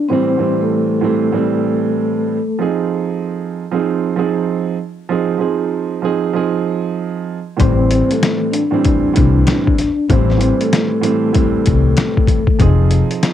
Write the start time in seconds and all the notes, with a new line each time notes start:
0.09 A2 E3 G3 C4 C5
0.13 C4
0.38 A2 E3 G3 C4
0.61 A3 A4
1.01 A2 E3 G3 A3 C4 A4
1.32 A2 E3 G3 C4
2.59 F3 C4 D#4 G#4
3.71 F3 C4 D#4 G#4
4.16 F3 C4 D#4 G#4
5.09 F3 C4 D#4 G#4
5.38 F3 C4 D#4 G#4
6.02 F3 C4 D#4 G#4
6.33 F3 C4 D#4 G#4
7.57 A1 A2 E3 G3 C4, kick, closed hi-hat
7.61 C5
7.91 closed hi-hat
8.11 A3 A4, closed hi-hat
8.23 finger snap, snare, closed hi-hat
8.51 D4 D5, closed hi-hat
8.71 A2 E3 G3 C4
8.85 kick, closed hi-hat
9.14 A2 E3 G3 C4, kick, closed hi-hat
9.18 C2
9.47 finger snap, snare, closed hi-hat
9.67 kick
9.78 snare, closed hi-hat
10.09 A1 A2 E3 G3 C4 C5, kick, closed hi-hat
10.13 C4
10.30 snare
10.37 A2 E3 G3 C4, closed hi-hat
10.60 A3 A4, closed hi-hat
10.73 finger snap, snare, closed hi-hat
11.01 A2 E3 G3 A3 C4 A4, closed hi-hat
11.32 A2 E3 G3 C4, kick, closed hi-hat
11.66 C2, kick, closed hi-hat
11.97 finger snap, snare, closed hi-hat
12.17 kick
12.27 kick, closed hi-hat
12.47 kick
12.59 F1 F3 C4 D#4 G#4, kick, closed hi-hat
12.91 closed hi-hat
13.11 closed hi-hat
13.23 finger snap, snare, closed hi-hat